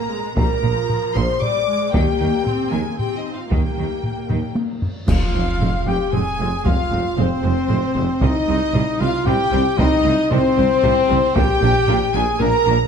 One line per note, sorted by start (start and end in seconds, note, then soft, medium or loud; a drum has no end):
0.00 0.12 A#3 medium
0.00 0.22 A#4 loud
0.00 0.36 A#5 medium
0.00 0.37 A#5 medium
0.11 0.37 G#3 medium
0.37 0.47 A#1 medium
0.37 0.45 A#1 medium
0.37 0.45 A#2 medium
0.37 0.63 G3 medium
0.37 1.14 A#4 loud
0.37 1.14 A#5 loud
0.37 1.15 A#5 medium
0.37 taiko medium
0.63 0.71 A#1 medium
0.63 0.74 A#1 medium
0.63 0.71 A#2 medium
0.63 1.40 F3 medium
0.90 taiko low-mid medium
1.15 1.24 A#1 medium
1.15 1.26 A#1 medium
1.15 1.24 A#2 medium
1.15 1.42 C5 loud
1.15 1.42 C6 medium
1.41 1.67 G3 medium
1.41 1.94 D5 loud
1.41 1.94 D6 loud
1.41 1.94 D6 medium
1.41 taiko low-mid medium
1.68 1.94 G#3 medium
1.92 2.02 D#2 medium
1.92 2.05 D#2 medium
1.92 2.03 D#3 medium
1.92 2.46 A#3 medium
1.92 2.72 G4 loud
1.92 2.70 G5 medium
1.92 2.71 G5 medium
1.92 taiko loud
2.20 2.29 D#2 medium
2.20 2.32 D#2 medium
2.20 2.28 D#3 medium
2.46 2.73 C4 medium
2.46 taiko low-mid medium
2.73 2.81 D#2 medium
2.73 2.84 D#2 medium
2.73 2.81 D#3 medium
2.73 2.99 A#3 medium
2.73 2.99 G#4 medium
2.73 2.99 G#5 medium
2.99 3.51 C4 medium
2.99 3.16 G4 medium
2.99 3.16 G5 medium
2.99 3.17 G5 medium
2.99 taiko low-mid medium
3.16 3.34 D#4 medium
3.16 3.34 D#5 medium
3.16 3.35 D#5 medium
3.34 3.52 F4 medium
3.34 3.51 F5 medium
3.34 3.52 F5 medium
3.51 3.59 D#2 medium
3.51 3.62 D#2 medium
3.51 3.59 D#3 medium
3.51 4.80 A#3 medium
3.51 4.56 G4 medium
3.51 4.56 G5 medium
3.51 4.54 G5 medium
3.51 taiko medium
3.77 3.88 D#2 soft
3.77 3.86 D#2 soft
3.77 3.86 D#3 soft
4.04 taiko low-mid soft
4.30 4.40 D#2 medium
4.30 4.38 D#2 medium
4.30 4.38 D#3 medium
4.30 taiko low-mid medium
4.55 taiko high medium
4.82 taiko low medium
5.07 5.16 F1 medium
5.07 5.19 F1 medium
5.07 5.16 F2 medium
5.07 5.17 G#3 medium
5.07 5.17 C4 medium
5.07 5.82 F4 loud
5.07 5.83 F4 medium
5.07 5.89 F5 medium
5.07 5.83 F5 medium
5.07 concert bass drum medium
5.07 taiko loud
5.07 crash medium
5.34 5.42 F1 medium
5.34 5.45 F1 medium
5.34 5.43 F2 medium
5.34 5.42 G#3 medium
5.34 5.42 C4 medium
5.60 5.69 F1 medium
5.60 5.71 F1 medium
5.60 5.69 F2 medium
5.60 5.69 G#3 medium
5.60 5.68 C4 medium
5.60 taiko low-mid medium
5.86 5.95 F1 medium
5.86 5.98 F1 medium
5.86 5.95 F2 medium
5.86 5.94 G#3 medium
5.86 5.95 C4 medium
5.86 6.12 G4 medium
5.86 6.13 G4 medium
5.86 6.11 G5 medium
5.86 6.14 G5 medium
5.86 6.13 G5 medium
6.12 6.24 F1 medium
6.12 6.22 F1 medium
6.12 6.21 F2 medium
6.12 6.21 G#3 medium
6.12 6.21 C4 medium
6.12 6.66 G#4 medium
6.12 6.64 G#5 medium
6.12 6.65 G#5 medium
6.12 taiko low-mid medium
6.39 6.47 F1 medium
6.39 6.50 F1 medium
6.39 6.47 F2 medium
6.39 6.48 G#3 medium
6.39 6.48 C4 medium
6.65 6.76 F1 medium
6.65 6.74 F1 medium
6.65 6.74 F2 medium
6.65 6.74 G#3 medium
6.65 6.74 C4 medium
6.65 7.16 F4 medium
6.65 7.18 F4 loud
6.65 7.19 F5 medium
6.65 7.18 F5 medium
6.65 taiko medium
6.92 7.02 F1 medium
6.92 7.00 F1 medium
6.92 7.00 F2 medium
6.92 7.00 G#3 medium
6.92 7.00 C4 medium
7.17 7.26 F1 medium
7.17 7.28 F1 medium
7.17 7.26 F2 medium
7.17 7.26 G#3 medium
7.17 8.24 C4 medium
7.17 7.26 C4 medium
7.17 8.23 C4 loud
7.17 8.21 C5 loud
7.17 8.23 C5 medium
7.17 8.21 C5 medium
7.17 taiko low-mid medium
7.44 7.52 F1 medium
7.44 7.54 F1 medium
7.44 7.52 F2 medium
7.44 7.52 G#3 medium
7.44 7.52 C4 medium
7.69 7.78 F1 medium
7.69 7.80 F1 medium
7.69 7.78 F2 medium
7.69 7.77 G#3 medium
7.69 7.77 C4 medium
7.69 taiko low-mid medium
7.96 8.04 F1 medium
7.96 8.07 F1 medium
7.96 8.05 F2 medium
7.96 8.04 G#3 medium
7.96 8.04 C4 medium
8.21 8.33 C2 medium
8.21 8.30 C2 medium
8.21 8.31 C3 medium
8.21 8.30 G3 medium
8.21 8.30 C4 medium
8.21 9.02 D#4 medium
8.21 9.01 D#4 loud
8.21 9.01 D#5 medium
8.21 8.99 D#5 medium
8.21 9.01 D#5 loud
8.21 taiko medium
8.48 8.59 C2 medium
8.48 8.57 C2 medium
8.48 8.57 C3 medium
8.48 8.56 G3 medium
8.48 8.56 C4 medium
8.74 8.84 C2 medium
8.74 8.82 C2 medium
8.74 8.83 C3 medium
8.74 8.82 G3 medium
8.74 8.82 C4 medium
8.74 taiko low-mid medium
8.99 9.08 C2 medium
8.99 9.11 C2 medium
8.99 9.10 C3 medium
8.99 9.08 G3 medium
8.99 9.09 C4 medium
8.99 9.26 F4 loud
8.99 9.26 F4 medium
8.99 9.27 F5 loud
8.99 9.26 F5 medium
8.99 9.28 F5 medium
9.25 9.34 C2 medium
9.25 9.37 C2 medium
9.25 9.35 C3 medium
9.25 9.35 G3 medium
9.25 9.35 C4 medium
9.25 9.78 G4 loud
9.25 9.79 G4 loud
9.25 9.78 G5 medium
9.25 9.78 G5 loud
9.25 9.79 G5 loud
9.25 taiko low-mid medium
9.52 9.60 C2 medium
9.52 9.63 C2 medium
9.52 9.61 C3 medium
9.52 9.60 G3 medium
9.52 9.61 C4 medium
9.78 9.86 C2 medium
9.78 9.90 C2 medium
9.78 9.87 C3 medium
9.78 9.87 G3 medium
9.78 9.87 C4 medium
9.78 10.30 D#4 loud
9.78 10.32 D#5 loud
9.78 10.31 D#5 loud
9.78 taiko loud
10.05 10.13 C2 medium
10.05 10.15 C2 medium
10.05 10.13 C3 medium
10.05 10.14 G3 medium
10.05 10.13 C4 medium
10.31 10.41 C2 medium
10.31 10.39 C2 medium
10.31 10.40 C3 medium
10.31 10.39 G3 medium
10.31 11.35 C4 loud
10.31 10.39 C4 medium
10.31 11.37 C4 loud
10.31 11.04 C5 loud
10.31 11.34 C5 loud
10.31 taiko low-mid medium
10.57 10.68 C2 medium
10.57 10.65 C2 medium
10.57 10.66 C3 medium
10.57 10.66 G3 medium
10.57 10.65 C4 medium
10.83 10.94 C2 medium
10.83 10.92 C2 medium
10.83 10.92 C3 loud
10.83 10.91 G3 medium
10.83 10.91 C4 medium
10.83 taiko low-mid medium
11.09 11.20 C2 medium
11.09 11.18 C2 medium
11.09 11.19 C3 medium
11.09 11.17 G3 medium
11.09 11.18 C4 medium
11.35 11.44 A#1 medium
11.35 11.47 A#1 medium
11.35 11.44 A#2 medium
11.35 11.44 A#3 medium
11.35 11.44 D4 medium
11.35 11.96 G4 loud
11.35 12.12 G4 loud
11.35 12.12 G5 loud
11.35 12.13 G5 loud
11.35 12.15 G5 loud
11.35 taiko loud
11.62 11.72 A#1 medium
11.62 11.70 A#1 medium
11.62 11.70 A#2 medium
11.62 11.70 A#3 medium
11.62 11.70 D4 medium
11.88 11.96 A#1 medium
11.88 11.99 A#1 loud
11.88 11.96 A#2 medium
11.88 11.97 A#3 medium
11.88 11.97 D4 medium
11.88 taiko low-mid medium
12.13 12.22 A#1 medium
12.13 12.25 A#1 medium
12.13 12.22 A#2 medium
12.13 12.23 A#3 medium
12.13 12.23 D4 medium
12.13 12.41 G#4 medium
12.13 12.41 G#4 loud
12.13 12.40 G#5 loud
12.13 12.43 G#5 medium
12.13 12.41 G#5 loud
12.39 12.51 A#1 medium
12.39 12.49 A#1 medium
12.39 12.48 A#2 medium
12.39 12.48 A#3 medium
12.39 12.49 D4 medium
12.39 12.76 A#4 loud
12.39 12.74 A#4 loud
12.39 12.88 A#5 loud
12.39 12.75 A#5 loud
12.39 12.88 A#5 loud
12.39 taiko low-mid medium
12.66 12.75 A#1 medium
12.66 12.77 A#1 medium
12.66 12.75 A#2 medium
12.66 12.74 A#3 medium
12.66 12.74 D4 medium